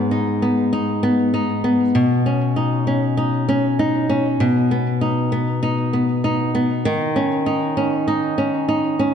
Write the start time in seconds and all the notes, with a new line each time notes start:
Already playing: G#2 B3 B4
0.11 D#4
0.42 B3
0.73 D#4
1.03 B3
1.34 D#4
1.64 B3
1.95 B2
2.26 C#4
2.56 D#4
2.87 C#4
3.17 D#4
3.48 C#4
3.79 D#4
4.09 C#4
4.40 B2
4.71 B3
5.01 D#4
5.32 B3
5.63 D#4
5.93 B3
6.24 D#4
6.55 B3
6.85 D#3
7.16 C#4
7.46 D#4
7.77 C#4
8.08 D#4
8.38 C#4
8.68 D#4
8.99 C#4